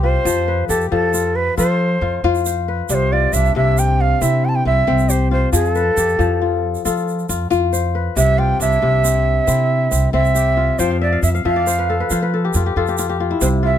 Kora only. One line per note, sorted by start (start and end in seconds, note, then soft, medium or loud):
0.00 0.30 C3 medium
0.00 0.54 C4 medium
0.00 1.13 F4 medium
0.00 0.69 G4 medium
0.25 0.91 F3 medium
0.48 1.71 B4 medium
0.70 2.11 G4 medium
0.92 2.95 F3 medium
1.14 1.57 F4 medium
1.57 2.02 F4 medium
1.57 2.89 A4 medium
2.02 2.24 F4 medium
2.24 3.12 F4 medium
2.46 3.65 C5 medium
2.68 3.62 B4 medium
2.90 3.55 C3 medium
3.12 4.28 F4 medium
3.35 5.02 D4 medium
3.56 5.59 C3 medium
3.78 4.21 C4 medium
4.21 4.66 C4 medium
4.21 5.37 E4 medium
4.66 4.87 C4 medium
4.88 5.81 C4 medium
5.09 5.97 G4 medium
5.31 6.41 F4 medium
5.53 6.18 F3 medium
5.75 6.98 B4 medium
5.98 7.39 G4 medium
6.19 8.22 F3 medium
6.41 6.85 F4 medium
6.85 7.29 F4 medium
6.85 8.17 A4 medium
7.29 7.50 F4 medium
7.51 8.38 F4 medium
7.73 8.91 C5 medium
7.95 8.88 B4 medium
8.17 8.81 C3 medium
8.38 9.54 F4 medium
8.60 10.28 D4 medium
8.82 10.84 C3 medium
9.04 9.47 C4 medium
9.47 9.91 C4 medium
9.47 10.63 E4 medium
9.91 10.13 C4 medium
10.13 11.85 C4 medium
10.35 11.76 G4 medium
10.57 11.07 F4 medium
10.79 11.44 F3 medium
10.79 11.73 G5 medium
10.91 11.12 F5 medium
11.01 11.23 E5 medium
11.12 11.34 F5 medium
11.24 11.45 E5 medium
11.35 12.34 F5 medium
11.45 13.46 F3 medium
11.45 12.17 E5 medium
11.56 12.67 D5 medium
11.67 12.06 C5 medium
11.79 12.00 B4 medium
11.90 12.33 A4 medium
12.00 12.22 B4 medium
12.11 12.55 F4 medium
12.11 13.30 C5 medium
12.22 13.47 B4 medium
12.34 12.77 A4 medium
12.45 12.66 G4 medium
12.56 12.76 F4 medium
12.66 12.88 G4 medium
12.77 12.98 F4 medium
12.77 13.78 A4 medium
12.88 13.09 G4 medium
12.99 13.20 F4 medium
13.09 13.78 G4 medium
13.20 13.62 F4 medium
13.31 13.69 E4 medium
13.41 13.78 C3 medium
13.63 13.78 F4 medium